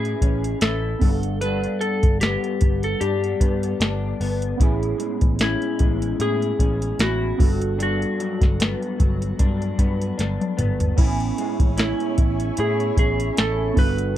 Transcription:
Already playing: picked electric bass A2, clean electric guitar A2 C#4 E4 G#4, synth keys C#4 E4 B4 E5 G#5, electric slide guitar G#4
0.05 closed hi-hat
0.22 picked electric bass A1, clean electric guitar C#4, kick, closed hi-hat
0.44 closed hi-hat
0.61 picked electric bass A1, clean electric guitar E4, electric slide guitar A4, snare, closed hi-hat
0.99 picked electric bass G1, clean electric guitar G2, synth keys B3 D4 F#5, kick, open hi-hat
1.04 synth keys A4
1.23 closed hi-hat
1.41 clean electric guitar G2 D4, electric slide guitar B4, closed hi-hat
1.64 closed hi-hat
1.81 electric slide guitar A4, closed hi-hat
2.03 picked electric bass G1, kick, closed hi-hat
2.21 clean electric guitar B3, electric slide guitar G4, snare, closed hi-hat
2.44 closed hi-hat
2.61 picked electric bass G1, kick, closed hi-hat
2.83 electric slide guitar A4, closed hi-hat
3.00 picked electric bass G2, clean electric guitar D4, electric slide guitar G4, closed hi-hat
3.24 closed hi-hat
3.41 picked electric bass G2, clean electric guitar B3, kick, closed hi-hat
3.63 closed hi-hat
3.80 picked electric bass G1, clean electric guitar D4, snare, closed hi-hat
4.21 picked electric bass G1, clean electric guitar B3, open hi-hat
4.42 closed hi-hat
4.57 picked electric bass A1, clean electric guitar A2, synth keys B3 C#4 E4, kick, closed hi-hat
4.61 clean electric guitar E4, synth keys G#4
4.83 closed hi-hat
4.98 clean electric guitar G#3, closed hi-hat
5.21 picked electric bass A1, kick, closed hi-hat
5.39 clean electric guitar C#4, electric slide guitar E4, snare, closed hi-hat
5.62 closed hi-hat
5.79 picked electric bass A1, clean electric guitar G#3, kick, closed hi-hat
6.02 closed hi-hat
6.20 picked electric bass A2, clean electric guitar E4, electric slide guitar G#4, closed hi-hat
6.42 closed hi-hat
6.59 picked electric bass A1, clean electric guitar C#4, kick, closed hi-hat
6.82 closed hi-hat
6.99 picked electric bass A1, clean electric guitar E4, electric slide guitar F#4, snare, closed hi-hat
7.38 picked electric bass G1, clean electric guitar G2, synth keys B3 D4 F#4, kick, open hi-hat
7.42 synth keys A4
7.62 closed hi-hat
7.78 clean electric guitar G2 D4, closed hi-hat
7.83 electric slide guitar F#4
8.02 closed hi-hat
8.19 clean electric guitar F#3, closed hi-hat
8.41 picked electric bass G1, kick, snare, closed hi-hat
8.60 clean electric guitar B3, snare, closed hi-hat
8.82 closed hi-hat
8.99 picked electric bass G1, clean electric guitar F#3, kick, closed hi-hat
9.22 closed hi-hat
9.39 picked electric bass G2, clean electric guitar D4, kick, closed hi-hat
9.62 closed hi-hat
9.79 picked electric bass G2, clean electric guitar B3, kick, closed hi-hat
10.02 closed hi-hat
10.18 picked electric bass G1, clean electric guitar D4, snare, closed hi-hat
10.41 closed hi-hat, high tom
10.57 picked electric bass G1, clean electric guitar B3, closed hi-hat, mid tom
10.80 closed hi-hat, floor tom
10.96 picked electric bass A1, clean electric guitar A2 E4, synth keys B3 C#4 E4, string machine C#5 E5 G#5 C#6, kick, crash
11.01 synth keys G#5
11.20 closed hi-hat
11.38 clean electric guitar G#3, closed hi-hat
11.60 picked electric bass A1, kick, closed hi-hat
11.77 clean electric guitar C#4, electric slide guitar E4, snare, closed hi-hat
12.00 closed hi-hat
12.18 picked electric bass A1, kick, closed hi-hat
12.40 closed hi-hat
12.57 picked electric bass A2, clean electric guitar E4, electric slide guitar G#4, closed hi-hat
12.80 closed hi-hat
12.97 picked electric bass A1, clean electric guitar C#4, electric slide guitar G#4, kick, closed hi-hat
13.20 closed hi-hat
13.37 picked electric bass A1, clean electric guitar E4, electric slide guitar A4, snare, closed hi-hat
13.73 picked electric bass G1, synth keys B3 D4 F#4, string machine B4 F#5, kick, open hi-hat
13.77 clean electric guitar G2, synth keys A4, electric slide guitar B4
13.98 closed hi-hat

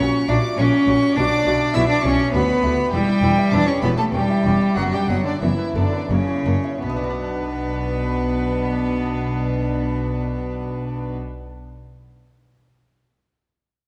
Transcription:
Already playing: cello C#4, violin section C#5 C#6
0.00 lute A#2, viola section F#4
0.13 lute F#4
0.28 double bass section A#1, lute A#2 E4, cello section A#2, cello D4, viola section F#4, violin section D5 D6
0.43 lute F#4
0.58 double bass section A#1, cello section A#2, lute A#2 C#4, cello C#4, viola section F#4, violin section C#5 C#6
0.67 violin section D6
0.73 lute F#4, violin section C#6
0.83 cello section A#2, violin section D6
0.87 double bass section A#1, lute A#2 C#4, viola section F#4, violin section C#6
1.02 lute F#4
1.16 double bass section B1, cello section B2, lute B2, cello D4, viola section F#4, violin section D5 D6
1.31 lute F#4
1.45 double bass section B1, cello section B2, lute B2 E4, viola section F#4
1.61 lute F#4
1.74 double bass section B1, cello section B2, lute B2 B3, cello E4, viola section F#4, violin section E5 E6
1.89 cello D4, lute F#4, violin section D5 D6
2.03 double bass section B1, cello section B2, lute B2 E4, cello C#4, viola section F#4, violin section C#5 C#6
2.20 lute F#4
2.32 cello section D2, double bass section D2, lute D2, cello B3, viola section F#4, violin section B4 B5
2.48 lute F#4
2.63 cello section D2, lute D2 E4, double bass section D2, viola section F#4
2.78 lute F#4
2.91 double bass section E1, cello section E2, lute E2, cello G3, viola section E4, violin section G4 G5
3.09 lute E4
3.22 double bass section E1, cello section E2, lute E2 D4, viola section E4
3.38 lute E4
3.51 double bass section E1, cello section E2, lute E2 B3, cello D4, viola section E4, violin section D5 D6
3.67 cello C#4, lute G4, violin section C#5 C#6
3.81 double bass section E1, cello section E2, lute E2 F#4, cello B3, viola section E4, violin section B4 B5
3.98 cello A3, lute G4, violin section A4 A5
4.12 double bass section E1, cello section E2, lute E2, cello G3, viola section C#4, violin section G4 G5
4.30 lute E4
4.45 double bass section E1, cello section E2, lute E2 D4, viola section C#4
4.61 lute E4
4.75 double bass section F#1, cello section F#2, lute F#2, cello F#3, viola section B3, violin section F#4 F#5
4.92 cello G3, lute D4, violin section G4 G5
5.08 double bass section F#1, cello section F#2, lute F#2 C#4, cello F#3, viola section B3, violin section F#4 F#5
5.24 cello D3, violin section D4 D5, lute D4
5.42 double bass section F#1, cello section F#2, lute F#2 B3, cello E3, viola section B3, violin section E4 E5
5.58 lute B4
5.75 double bass section F#1, cello section F#2, lute F#2 A4, cello D3, viola section B3, violin section D4 D5
5.93 lute B4
6.10 double bass section F#1, cello section F#2, lute F#2, cello C#3, viola section A#3, violin section C#4 C#5
6.27 lute E4
6.45 double bass section F#1, cello section F#2, lute F#2 D4, viola section A#3
6.64 lute E4
6.81 double bass section B1, cello section B2, lute B2, violin section B3 B4, cello B3, viola section D4
6.89 lute B3
6.96 lute D4
7.04 lute F#4
7.10 lute D5

